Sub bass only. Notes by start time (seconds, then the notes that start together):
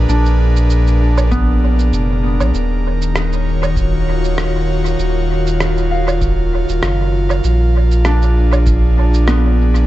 0.09 A#1
1.93 F1
2.41 A#1
2.54 D#1
4.99 D#1
6.69 D#1
6.83 F#1
7.44 A#1